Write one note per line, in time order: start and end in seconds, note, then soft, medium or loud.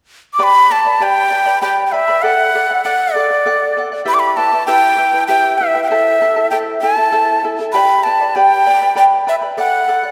0.34 0.45 D6 medium
0.39 0.70 G4 medium
0.39 0.69 B4 medium
0.39 0.69 D5 medium
0.39 0.68 G5 medium
0.39 0.70 B5 medium
0.43 0.73 B5 medium
0.70 0.85 B4 soft
0.70 0.85 D5 soft
0.70 0.85 G5 medium
0.70 1.04 A5 medium
0.70 0.84 B5 medium
0.85 1.00 B4 soft
0.85 1.00 D5 soft
0.85 1.01 B5 soft
1.00 1.31 G4 medium
1.00 1.30 B4 medium
1.00 1.30 D5 medium
1.00 1.29 G5 medium
1.00 1.61 G5 medium
1.00 1.31 B5 medium
1.30 1.46 B4 medium
1.30 1.45 D5 medium
1.30 1.46 G5 medium
1.30 1.45 B5 medium
1.46 1.61 B4 soft
1.46 1.61 D5 soft
1.46 1.61 B5 soft
1.62 1.92 G4 medium
1.62 1.92 B4 medium
1.62 1.92 D5 medium
1.62 1.91 G5 medium
1.62 1.84 G5 medium
1.62 1.92 B5 medium
1.86 1.93 G5 medium
1.92 2.08 B4 medium
1.92 2.08 D5 medium
1.92 2.24 E5 medium
1.92 2.07 G5 soft
1.92 2.07 B5 medium
2.08 2.24 B4 soft
2.08 2.23 D5 soft
2.08 2.23 B5 soft
2.22 2.54 A4 medium
2.22 2.54 D5 medium
2.22 2.84 F#5 medium
2.22 2.54 F#5 medium
2.55 2.69 A4 soft
2.55 2.70 D5 medium
2.55 2.70 F#5 medium
2.71 2.84 D5 soft
2.71 2.85 F#5 soft
2.84 3.14 A4 medium
2.84 3.15 D5 medium
2.84 3.15 F#5 medium
3.14 3.30 A4 soft
3.14 3.83 D5 medium
3.14 3.31 D5 medium
3.14 3.29 F#5 medium
3.30 3.45 D5 soft
3.30 3.45 F#5 medium
3.46 3.76 A4 medium
3.46 3.76 D5 medium
3.46 3.76 F#5 medium
3.77 3.91 A4 medium
3.77 3.92 D5 medium
3.77 3.91 F#5 medium
3.92 4.05 D5 soft
3.92 4.05 F#5 soft
4.05 4.36 E4 medium
4.05 4.36 G4 medium
4.05 4.37 B4 medium
4.05 4.36 E5 medium
4.05 4.37 G5 medium
4.05 4.15 B5 medium
4.14 4.21 D6 medium
4.19 4.38 B5 medium
4.37 4.52 E4 medium
4.37 4.52 B4 medium
4.37 4.52 E5 medium
4.37 4.51 G5 medium
4.37 4.66 A5 medium
4.52 4.67 E4 soft
4.52 4.67 B4 soft
4.52 4.67 G5 soft
4.67 4.97 E4 medium
4.67 4.98 G4 medium
4.67 4.97 B4 medium
4.67 4.97 E5 medium
4.67 5.24 G5 loud
4.67 4.98 G5 medium
4.98 5.13 E4 medium
4.98 5.13 B4 medium
4.98 5.13 E5 medium
4.98 5.12 G5 medium
5.13 5.28 E4 soft
5.13 5.29 B4 soft
5.13 5.28 G5 soft
5.27 5.59 E4 medium
5.27 5.59 G4 medium
5.27 5.60 B4 medium
5.27 5.58 E5 medium
5.27 5.59 G5 medium
5.27 5.60 G5 medium
5.58 5.75 E4 medium
5.58 5.74 B4 medium
5.58 5.82 E5 medium
5.58 5.74 E5 medium
5.58 5.73 G5 medium
5.75 5.89 E4 soft
5.75 5.90 B4 soft
5.75 5.90 G5 soft
5.84 5.90 G5 medium
5.88 6.20 E4 medium
5.88 6.20 A4 medium
5.88 6.21 C5 medium
5.88 6.50 E5 medium
5.88 6.20 E5 medium
5.88 6.21 A5 medium
6.21 6.36 E4 medium
6.21 6.36 A4 medium
6.21 6.36 E5 soft
6.21 6.35 A5 medium
6.36 6.51 E4 soft
6.36 6.51 A4 soft
6.36 6.51 A5 soft
6.51 6.82 E4 medium
6.51 6.82 A4 medium
6.51 6.82 C5 medium
6.51 6.81 E5 medium
6.51 6.57 G5 medium
6.51 6.82 A5 medium
6.81 6.97 E4 medium
6.81 6.96 A4 soft
6.81 6.97 E5 soft
6.81 7.46 A5 medium
6.81 6.96 A5 medium
6.97 7.11 E4 soft
6.97 7.12 A4 soft
6.97 7.12 A5 soft
7.12 7.43 E4 medium
7.12 7.43 A4 medium
7.12 7.43 C5 medium
7.12 7.43 E5 medium
7.12 7.43 A5 medium
7.44 7.59 E4 medium
7.44 7.59 A4 medium
7.44 7.59 E5 soft
7.44 7.58 A5 medium
7.59 7.74 E4 soft
7.59 7.74 A4 soft
7.59 7.74 A5 soft
7.73 8.04 G4 medium
7.73 8.05 B4 medium
7.73 8.05 D5 medium
7.73 8.04 G5 medium
7.73 8.05 B5 medium
8.03 8.20 B4 soft
8.03 8.20 D5 medium
8.03 8.20 G5 soft
8.03 8.37 A5 medium
8.03 8.20 B5 medium
8.21 8.35 B4 soft
8.21 8.35 D5 soft
8.21 8.35 B5 soft
8.35 8.66 G4 medium
8.35 8.65 B4 medium
8.35 8.65 D5 medium
8.35 8.96 G5 medium
8.35 8.64 G5 medium
8.35 8.66 B5 medium
8.65 8.81 B4 soft
8.65 8.81 D5 medium
8.65 8.81 G5 soft
8.65 8.80 B5 medium
8.81 8.95 B4 soft
8.81 8.95 D5 soft
8.81 8.95 B5 soft
8.95 9.26 G4 medium
8.95 9.26 B4 medium
8.95 9.26 D5 medium
8.95 9.26 G5 medium
8.95 9.04 G5 medium
8.95 9.27 B5 medium
9.27 9.42 B4 medium
9.27 9.42 D5 medium
9.27 9.35 E5 medium
9.27 9.42 G5 soft
9.27 9.40 B5 medium
9.42 9.58 B4 soft
9.42 9.57 D5 soft
9.42 9.57 B5 soft
9.57 9.87 A4 medium
9.57 9.88 D5 medium
9.57 9.88 F#5 medium
9.57 10.11 F#5 medium
9.88 10.03 A4 soft
9.88 10.03 D5 medium
9.88 10.02 F#5 medium
10.03 10.11 D5 soft
10.03 10.11 F#5 soft